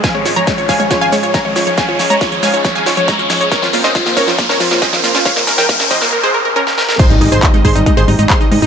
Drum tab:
CC |----------------|----------------|----------------|----------------|
HH |x-oxxxoxxxoxx-ox|x-oxxxoxxxoxx-ox|x-oxxxoxxxoxx-ox|xxoxxxox--------|
SH |x-xxxxxxx-xxx-xx|x-xxxxxxx-xxxxxx|x-xxxxxxx-xxx-xx|xxxxxxxx--------|
CP |----------------|----------------|----------------|----------------|
SD |o-o-o-o-o-o-o-o-|o-o-o-o-o-o-o-o-|oooooooooooooooo|oooooooo-----ooo|
BD |o---o-o-o---o---|o---o---o---o---|o---o-o-o---o---|o---o-o---------|

CC |x---------------|
HH |xxoxxxoxxxoxx-ox|
SH |xx-xxx-xxx-xxx-x|
CP |----x-------x---|
SD |----------------|
BD |o---o-o-o---o---|